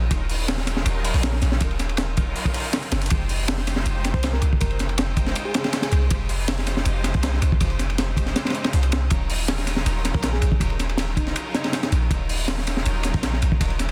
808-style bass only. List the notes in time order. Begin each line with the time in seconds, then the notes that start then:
0.11 D#1
0.86 D#1
1.14 A#1
1.42 A#1
1.61 D#1
2.92 F#1
3.11 F1
3.86 F1
4.14 C2
4.42 C2
4.61 F1
5.92 C2
6.11 F1
6.86 F1
7.15 C2
7.42 C2
7.61 F1
8.74 C2
9.11 D#1
9.86 D#1
10.15 A#1
10.42 A#1
10.60 D#1
11.92 A#1
12.11 D#1
12.86 D#1
13.14 A#1
13.42 A#1
13.61 D#1